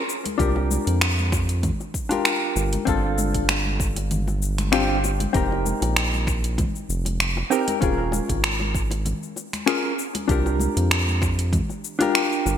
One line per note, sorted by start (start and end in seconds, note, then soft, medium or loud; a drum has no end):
0.09 cabasa medium
0.25 closed hi-hat medium
0.25 high bongo soft
0.25 high conga medium
0.25 cabasa soft
0.38 0.78 C2 loud
0.38 2.07 D4 medium
0.38 2.07 F4 medium
0.38 2.08 G4 medium
0.38 2.08 A#4 medium
0.38 kick loud
0.38 closed hi-hat soft
0.38 cabasa soft
0.56 high bongo medium
0.71 high conga medium
0.71 cabasa medium
0.87 1.71 F2 medium
0.87 closed hi-hat medium
0.87 cabasa soft
1.01 finger snap loud
1.01 closed hi-hat soft
1.01 high bongo soft
1.01 cabasa soft
1.19 high conga medium
1.19 cabasa soft
1.32 finger snap soft
1.32 kick loud
1.32 high bongo medium
1.32 cabasa medium
1.49 closed hi-hat medium
1.49 cabasa soft
1.63 kick loud
1.63 closed hi-hat soft
1.63 high conga medium
1.63 low conga medium
1.63 cabasa soft
1.80 high bongo soft
1.80 cabasa soft
1.94 kick medium
1.94 cabasa medium
2.09 2.83 D4 medium
2.09 2.83 F4 medium
2.09 2.84 G4 medium
2.09 2.85 A#4 medium
2.09 closed hi-hat medium
2.09 high bongo medium
2.09 high conga medium
2.09 cabasa soft
2.25 finger snap medium
2.25 closed hi-hat soft
2.25 cabasa soft
2.56 2.78 G1 loud
2.56 high bongo soft
2.56 cabasa medium
2.73 closed hi-hat medium
2.73 high conga medium
2.73 cabasa soft
2.85 5.27 G1 loud
2.85 4.68 C4 medium
2.85 4.69 D4 medium
2.85 4.70 F4 medium
2.85 4.70 A4 medium
2.85 kick loud
2.85 closed hi-hat soft
2.85 cabasa soft
3.18 high bongo soft
3.18 high conga medium
3.18 cabasa medium
3.34 kick medium
3.34 closed hi-hat medium
3.34 cabasa soft
3.49 finger snap medium
3.49 closed hi-hat soft
3.49 high bongo medium
3.49 cabasa soft
3.66 high conga medium
3.80 kick loud
3.80 cabasa medium
3.96 closed hi-hat medium
3.96 high bongo medium
3.96 cabasa soft
4.11 closed hi-hat soft
4.11 high conga medium
4.11 low conga medium
4.11 cabasa soft
4.28 high bongo medium
4.28 cabasa soft
4.42 cabasa medium
4.58 finger snap soft
4.58 closed hi-hat medium
4.58 high conga medium
4.58 cabasa soft
4.72 4.97 C4 medium
4.72 4.97 D4 medium
4.72 4.97 F4 medium
4.72 4.98 G4 medium
4.72 finger snap medium
4.72 closed hi-hat soft
4.72 high bongo soft
4.72 cabasa soft
5.04 high bongo medium
5.04 cabasa medium
5.20 closed hi-hat medium
5.20 high conga medium
5.20 cabasa soft
5.33 5.73 F1 loud
5.33 7.47 C4 medium
5.33 7.47 D#4 medium
5.33 7.48 G4 medium
5.33 7.49 A#4 medium
5.33 kick loud
5.33 closed hi-hat soft
5.33 cabasa soft
5.52 high bongo medium
5.66 high conga medium
5.66 cabasa medium
5.82 6.66 A#1 loud
5.82 closed hi-hat medium
5.82 high bongo medium
5.82 cabasa soft
5.96 finger snap loud
5.96 closed hi-hat soft
5.96 cabasa soft
6.14 high conga medium
6.14 cabasa soft
6.27 finger snap soft
6.27 kick loud
6.27 high bongo medium
6.27 cabasa medium
6.44 closed hi-hat medium
6.44 cabasa soft
6.58 kick loud
6.58 closed hi-hat soft
6.58 high bongo medium
6.58 high conga loud
6.58 low conga medium
6.58 cabasa soft
6.75 cabasa soft
6.89 7.43 F1 medium
6.89 cabasa medium
7.05 closed hi-hat medium
7.05 high bongo medium
7.05 high conga medium
7.05 cabasa soft
7.20 finger snap medium
7.20 closed hi-hat soft
7.20 cabasa soft
7.37 high bongo medium
7.50 7.78 C4 medium
7.50 7.79 D#4 medium
7.50 7.79 G4 medium
7.50 7.79 A#4 loud
7.50 cabasa medium
7.68 closed hi-hat medium
7.68 high conga medium
7.68 cabasa soft
7.80 8.21 D#1 loud
7.80 9.63 C#4 medium
7.80 9.64 F4 medium
7.80 9.64 G#4 medium
7.80 9.65 A#4 medium
7.80 kick loud
7.80 closed hi-hat soft
7.80 high bongo medium
7.80 cabasa soft
8.12 high bongo medium
8.12 high conga loud
8.12 cabasa medium
8.29 9.14 G#1 loud
8.29 kick medium
8.29 closed hi-hat medium
8.29 cabasa soft
8.44 finger snap loud
8.44 closed hi-hat soft
8.44 cabasa soft
8.60 high bongo medium
8.60 high conga medium
8.75 kick loud
8.75 cabasa medium
8.91 closed hi-hat medium
8.91 high bongo medium
8.91 cabasa soft
9.05 closed hi-hat soft
9.05 high conga medium
9.05 low conga medium
9.05 cabasa soft
9.23 cabasa soft
9.36 high bongo medium
9.36 cabasa medium
9.53 finger snap soft
9.53 closed hi-hat medium
9.53 high conga medium
9.53 cabasa soft
9.66 9.91 C#4 medium
9.66 9.92 F4 medium
9.66 9.92 G#4 medium
9.66 9.92 A#4 medium
9.66 finger snap medium
9.66 closed hi-hat soft
9.66 high bongo medium
9.66 cabasa soft
9.99 cabasa medium
10.15 closed hi-hat medium
10.15 high bongo medium
10.15 high conga medium
10.15 cabasa soft
10.28 10.68 C2 loud
10.28 11.96 D4 medium
10.28 11.97 F4 medium
10.28 11.98 G4 medium
10.28 11.98 A#4 medium
10.28 kick loud
10.28 closed hi-hat soft
10.28 cabasa soft
10.46 high bongo medium
10.46 cabasa soft
10.60 high conga medium
10.60 cabasa medium
10.77 11.61 F2 loud
10.77 closed hi-hat medium
10.77 cabasa soft
10.90 finger snap loud
10.90 closed hi-hat medium
10.90 high bongo medium
10.90 cabasa soft
11.07 high conga medium
11.07 cabasa soft
11.22 finger snap soft
11.22 kick loud
11.22 high bongo medium
11.22 cabasa medium
11.39 closed hi-hat medium
11.39 cabasa soft
11.53 kick loud
11.53 closed hi-hat soft
11.53 high conga medium
11.53 low conga loud
11.53 cabasa soft
11.69 high bongo medium
11.69 cabasa soft
11.84 cabasa medium
11.99 12.58 D4 medium
11.99 12.58 F4 medium
11.99 12.58 G4 medium
11.99 12.58 A#4 medium
11.99 closed hi-hat medium
11.99 high bongo medium
11.99 high conga medium
11.99 cabasa soft
12.15 finger snap loud
12.15 closed hi-hat soft
12.15 cabasa soft
12.32 cabasa soft
12.46 12.58 G1 loud
12.46 high bongo medium
12.46 cabasa medium